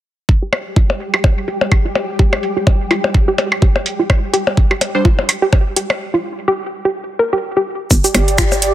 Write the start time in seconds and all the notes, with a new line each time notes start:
0.29 G3 G4, kick
0.42 G4
0.53 percussion blips
0.76 F4, kick
0.90 percussion blips
1.00 closed hi-hat
1.14 G4, percussion blips
1.24 kick, percussion blips
1.48 G4, closed hi-hat
1.61 percussion blips
1.72 kick, percussion blips
1.85 F4
1.95 closed hi-hat, percussion blips
2.19 G4, kick
2.33 percussion blips
2.43 closed hi-hat
2.57 G4
2.67 kick, percussion blips
2.91 F4, closed hi-hat, percussion blips
3.04 percussion blips
3.14 kick
3.28 G4
3.38 closed hi-hat, percussion blips
3.52 percussion blips
3.62 G4, kick
3.76 percussion blips
3.86 closed hi-hat
3.99 F4
4.10 kick, percussion blips
4.34 G4, closed hi-hat
4.47 percussion blips
4.57 kick
4.71 G4, percussion blips
4.81 closed hi-hat, percussion blips
4.95 G3 D4 C5
5.05 F4, kick
5.19 percussion blips
5.29 closed hi-hat, percussion blips
5.42 G4
5.53 kick, percussion blips
5.76 G4, closed hi-hat
5.90 percussion blips
6.14 F4
6.48 G4
6.85 G4
7.19 A#4
7.33 G4
7.57 G4
7.91 G1 G4, kick, shaker
8.01 G4 D5, closed hi-hat, shaker
8.14 G1, closed hi-hat, percussion blips
8.28 closed hi-hat
8.38 F4, finger snap, kick, shaker
8.52 percussion blips, shaker
8.62 closed hi-hat